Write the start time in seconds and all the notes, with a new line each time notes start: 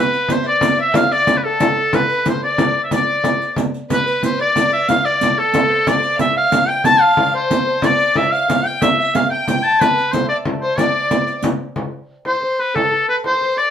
Already playing: B4 D5 F5 G5
0.00 B4
0.13 riq
0.28 C5, riq, frame drum
0.32 C5
0.42 D5 E5, frame drum
0.48 D5
0.61 D5, riq, frame drum
0.77 E5, frame drum
0.91 F5 G5, riq, frame drum
0.96 F5
1.11 D5, riq
1.27 riq, frame drum
1.37 B4
1.43 A4, frame drum
1.60 riq, frame drum
1.76 frame drum
1.93 B4, riq, frame drum
2.09 B4, riq
2.26 C5, riq, frame drum
2.42 D5, frame drum
2.58 riq, frame drum
2.75 frame drum
2.84 E5
2.91 D5, riq, frame drum
3.24 riq, frame drum
3.41 riq, frame drum
3.56 riq, frame drum
3.74 riq, frame drum
3.89 B4, riq, frame drum
4.06 B4, riq
4.23 C5, riq, frame drum
4.39 D5, frame drum
4.56 riq, frame drum
4.60 D5
4.73 E5, frame drum
4.88 F5, riq, frame drum
5.05 D5, riq
5.21 riq, frame drum
5.38 A4, frame drum
5.54 riq, frame drum
5.70 C5, frame drum
5.86 D5, riq, frame drum
6.03 D5, riq
6.16 E5 F5, riq, frame drum
6.21 E5
6.36 F5, frame drum
6.52 riq, frame drum
6.68 G5
6.84 A5, riq, frame drum
7.01 F5
7.17 D5, frame drum
7.34 C5
7.51 riq, frame drum
7.67 C5
7.82 D5, riq, frame drum
8.00 riq
8.16 E5, frame drum
8.32 F5, frame drum
8.48 F5, riq, frame drum
8.65 G5, frame drum
8.82 E5, riq, frame drum
8.99 E5
9.14 F5, riq, frame drum
9.30 G5, frame drum
9.48 G5, riq, frame drum
9.64 A5
9.81 B4, riq, frame drum
9.97 B4, riq
10.12 C5, riq, frame drum
10.25 D5 E5
10.30 D5, frame drum
10.45 frame drum
10.62 C5, frame drum
10.76 D5, riq, frame drum
11.11 riq, frame drum
11.27 riq, frame drum
11.43 riq, frame drum
11.76 frame drum
11.92 frame drum
12.25 C5, frame drum
12.42 C5, frame drum
12.59 B4
12.74 A4, frame drum
12.90 A4, frame drum
13.08 B4
13.24 C5, frame drum
13.41 C5, frame drum
13.56 D5